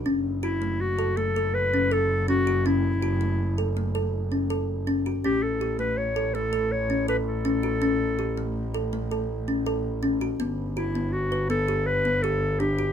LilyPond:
<<
  \new Staff \with { instrumentName = "Clarinet" } { \time 7/4 \key fis \phrygian \tempo 4 = 163 r4 e'4 fis'4 a'4 b'4 a'4 fis'4 | e'2. r1 | g'8 a'4 b'8 cis''4 a'4 cis''4 b'8 a'4.~ | a'2~ a'8 r1 r8 |
r4 e'4 fis'4 a'4 b'4 a'4 g'4 | }
  \new Staff \with { instrumentName = "Kalimba" } { \time 7/4 \key fis \phrygian cis'4 fis'8 a4 a'8 a8 a'4 cis'8 a'4 cis'8 fis'8 | cis'4 fis'8 a4 a'8 a8 a'4 cis'8 a'4 cis'8 fis'8 | cis'4 g'8 a4 a'8 a8 a'4 cis'8 a'4 cis'8 fis'8 | cis'4 g'8 a4 a'8 a8 a'4 cis'8 a'4 cis'8 fis'8 |
b4 fis'8 b4 b'8 b8 g'4 b8 g'4 d'8 fis'8 | }
  \new Staff \with { instrumentName = "Double bass" } { \clef bass \time 7/4 \key fis \phrygian fis,,1.~ fis,,4~ | fis,,1.~ fis,,4 | a,,1.~ a,,4~ | a,,1.~ a,,4 |
g,,1.~ g,,4 | }
>>